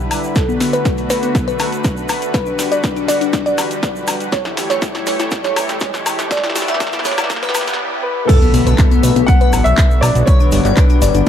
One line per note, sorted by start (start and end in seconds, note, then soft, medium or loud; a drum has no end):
0.00 4.28 D3 medium
0.00 0.34 G3 medium
0.00 0.32 E4 medium
0.00 4.28 B4 medium
0.00 0.26 F#5 loud
0.11 open hi-hat loud
0.11 high woodblock medium
0.11 shaker medium
0.23 shaker soft
0.36 2.32 A3 medium
0.36 2.32 F#4 medium
0.36 0.44 A4 loud
0.36 kick loud
0.36 snare medium
0.36 closed hi-hat medium
0.36 riser medium
0.36 shaker soft
0.48 0.57 B3 medium
0.48 shaker soft
0.60 0.69 B3 medium
0.60 snare medium
0.60 open hi-hat loud
0.60 shaker medium
0.73 0.81 B4 loud
0.73 closed hi-hat medium
0.73 shaker soft
0.85 0.94 B3 medium
0.85 kick loud
0.85 snare medium
0.85 closed hi-hat medium
0.85 shaker medium
0.98 1.06 B3 medium
0.98 closed hi-hat soft
0.98 shaker soft
1.10 1.19 B4 medium
1.10 snare medium
1.10 open hi-hat loud
1.10 shaker medium
1.23 1.31 B3 medium
1.23 closed hi-hat medium
1.23 shaker soft
1.35 1.44 B3 medium
1.35 kick loud
1.35 snare medium
1.35 closed hi-hat medium
1.35 shaker soft
1.48 2.24 B4 loud
1.48 closed hi-hat soft
1.48 shaker soft
1.59 snare medium
1.59 open hi-hat loud
1.59 high woodblock medium
1.59 shaker medium
1.72 closed hi-hat soft
1.72 shaker soft
1.84 kick loud
1.84 snare medium
1.84 closed hi-hat medium
1.84 shaker soft
1.97 shaker soft
2.09 snare medium
2.09 open hi-hat loud
2.09 high woodblock medium
2.09 shaker medium
2.22 closed hi-hat soft
2.22 shaker soft
2.34 4.30 G3 medium
2.34 4.30 F#4 medium
2.34 2.43 B4 loud
2.34 kick loud
2.34 snare medium
2.34 closed hi-hat medium
2.34 shaker medium
2.46 2.55 D4 medium
2.46 shaker soft
2.59 2.67 D4 medium
2.59 snare medium
2.59 open hi-hat loud
2.59 shaker medium
2.72 2.80 D5 medium
2.72 closed hi-hat medium
2.72 shaker soft
2.84 2.92 D4 medium
2.84 kick loud
2.84 snare medium
2.84 closed hi-hat medium
2.84 shaker soft
2.96 3.04 D4 medium
2.96 closed hi-hat soft
2.96 shaker soft
3.08 3.17 D5 loud
3.08 snare medium
3.08 open hi-hat loud
3.08 shaker medium
3.21 3.29 D4 medium
3.21 closed hi-hat medium
3.21 shaker soft
3.33 3.42 D4 medium
3.33 kick loud
3.33 snare medium
3.33 closed hi-hat medium
3.33 shaker medium
3.46 4.23 D5 loud
3.46 closed hi-hat soft
3.46 shaker soft
3.58 snare medium
3.58 open hi-hat loud
3.58 high woodblock medium
3.58 shaker loud
3.71 closed hi-hat medium
3.71 shaker soft
3.83 kick loud
3.83 snare medium
3.83 closed hi-hat medium
3.83 shaker soft
3.96 shaker soft
4.07 snare medium
4.07 open hi-hat loud
4.07 high woodblock medium
4.07 shaker medium
4.20 closed hi-hat medium
4.20 shaker soft
4.32 8.25 E3 medium
4.32 6.29 A3 medium
4.32 8.25 G4 medium
4.32 4.41 C#5 loud
4.32 6.29 C#5 medium
4.32 kick loud
4.32 snare medium
4.32 closed hi-hat medium
4.32 shaker soft
4.45 4.53 E4 medium
4.45 snare medium
4.45 shaker soft
4.57 4.66 E4 medium
4.57 snare medium
4.57 open hi-hat loud
4.57 shaker medium
4.70 4.78 C#5 medium
4.70 snare medium
4.70 closed hi-hat medium
4.70 shaker soft
4.82 4.91 E4 medium
4.82 kick loud
4.82 snare medium
4.82 closed hi-hat medium
4.82 shaker medium
4.95 5.03 E4 medium
4.95 snare medium
4.95 closed hi-hat soft
4.95 shaker soft
5.06 5.15 C#5 loud
5.06 snare loud
5.06 open hi-hat loud
5.06 shaker medium
5.19 5.28 E4 medium
5.19 snare medium
5.19 closed hi-hat medium
5.19 shaker soft
5.31 5.40 E4 medium
5.31 kick loud
5.31 snare loud
5.31 closed hi-hat medium
5.31 shaker soft
5.44 6.21 C#5 medium
5.44 snare medium
5.44 closed hi-hat soft
5.44 shaker soft
5.56 snare medium
5.56 open hi-hat loud
5.56 high woodblock medium
5.56 shaker medium
5.69 snare medium
5.69 closed hi-hat medium
5.69 shaker soft
5.80 kick loud
5.80 snare loud
5.80 closed hi-hat medium
5.80 shaker soft
5.94 snare medium
5.94 shaker soft
6.06 snare loud
6.06 open hi-hat loud
6.06 high woodblock medium
6.06 shaker medium
6.19 snare medium
6.19 closed hi-hat medium
6.19 shaker soft
6.31 8.27 B3 medium
6.31 6.39 D5 loud
6.31 8.27 D5 medium
6.31 kick loud
6.31 snare loud
6.31 closed hi-hat medium
6.31 shaker medium
6.37 snare medium
6.44 6.52 E4 medium
6.44 snare medium
6.44 closed hi-hat soft
6.44 shaker soft
6.50 snare medium
6.56 6.64 E4 medium
6.56 snare loud
6.56 open hi-hat loud
6.56 shaker medium
6.62 snare medium
6.68 6.76 E5 loud
6.68 snare medium
6.68 closed hi-hat medium
6.68 shaker soft
6.74 snare medium
6.80 6.89 E4 medium
6.80 kick loud
6.80 snare loud
6.80 closed hi-hat medium
6.80 shaker medium
6.87 snare medium
6.92 7.01 E4 medium
6.92 snare medium
6.92 closed hi-hat soft
6.92 shaker soft
6.99 snare medium
7.05 7.14 C#5 medium
7.05 kick medium
7.05 snare loud
7.05 open hi-hat loud
7.05 shaker medium
7.11 snare medium
7.18 7.26 E4 medium
7.18 snare loud
7.18 closed hi-hat medium
7.18 high woodblock medium
7.18 shaker soft
7.24 snare medium
7.30 7.39 E4 medium
7.30 kick loud
7.30 snare loud
7.30 closed hi-hat medium
7.30 shaker soft
7.36 snare medium
7.42 7.80 B4 medium
7.42 snare medium
7.42 closed hi-hat soft
7.42 shaker soft
7.49 snare loud
7.55 snare loud
7.55 open hi-hat loud
7.55 high woodblock medium
7.55 shaker medium
7.61 snare medium
7.67 snare loud
7.67 closed hi-hat medium
7.67 shaker soft
7.73 snare medium
8.03 8.29 B4 medium
8.27 11.29 D3 medium
8.27 11.29 F#3 medium
8.27 10.25 A3 medium
8.27 11.29 B3 medium
8.27 9.23 A4 medium
8.27 8.38 A4 loud
8.27 kick loud
8.27 closed hi-hat medium
8.27 crash loud
8.27 impact medium
8.27 shaker soft
8.42 8.50 B3 medium
8.42 shaker soft
8.54 8.62 B1 loud
8.54 8.62 B3 medium
8.54 open hi-hat loud
8.54 shaker medium
8.67 8.74 B1 medium
8.67 8.75 B4 loud
8.67 closed hi-hat medium
8.67 shaker soft
8.78 8.87 B3 medium
8.78 kick loud
8.78 clap loud
8.78 closed hi-hat medium
8.78 shaker soft
8.91 9.00 B3 medium
8.91 closed hi-hat soft
8.91 shaker soft
9.03 9.12 B1 loud
9.03 9.12 B4 medium
9.03 open hi-hat loud
9.03 shaker loud
9.16 9.24 B1 medium
9.16 9.24 B3 medium
9.16 closed hi-hat medium
9.16 shaker soft
9.27 9.37 B3 medium
9.27 9.62 F#5 loud
9.27 kick loud
9.27 closed hi-hat medium
9.27 shaker medium
9.41 10.18 B4 loud
9.41 closed hi-hat soft
9.41 shaker soft
9.53 9.61 A1 loud
9.53 open hi-hat loud
9.53 high woodblock medium
9.53 shaker medium
9.64 9.74 B1 medium
9.64 10.03 E5 loud
9.64 closed hi-hat medium
9.64 shaker soft
9.78 kick loud
9.78 clap loud
9.78 closed hi-hat medium
9.78 shaker medium
9.91 shaker soft
10.01 10.11 B1 medium
10.01 10.27 D5 medium
10.01 open hi-hat loud
10.01 high woodblock medium
10.01 shaker medium
10.15 10.23 B1 medium
10.15 closed hi-hat medium
10.15 shaker soft
10.26 11.29 G3 medium
10.26 10.36 B4 loud
10.26 10.78 C#5 loud
10.26 kick loud
10.26 closed hi-hat medium
10.26 shaker soft
10.40 10.48 D4 medium
10.40 shaker soft
10.52 10.61 G1 loud
10.52 10.61 D4 medium
10.52 open hi-hat loud
10.52 shaker medium
10.65 10.73 G1 medium
10.65 10.73 D5 loud
10.65 clap soft
10.65 closed hi-hat medium
10.65 shaker soft
10.75 10.86 D4 medium
10.75 11.22 B4 medium
10.75 kick loud
10.75 clap loud
10.75 closed hi-hat medium
10.75 shaker medium
10.90 10.98 D4 medium
10.90 closed hi-hat soft
10.90 shaker soft
11.02 11.10 G1 loud
11.02 11.10 D5 medium
11.02 open hi-hat loud
11.02 shaker loud
11.14 11.22 G1 medium
11.14 11.23 D4 medium
11.14 closed hi-hat medium
11.14 shaker soft